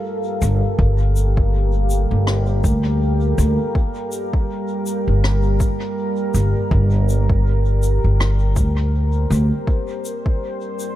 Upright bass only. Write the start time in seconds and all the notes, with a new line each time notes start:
0.42 G1
0.79 G1
2.11 G1
2.64 D2
3.38 D2
5.08 G1
6.34 G1
6.71 G1
8.04 G1
8.57 D2
9.30 D2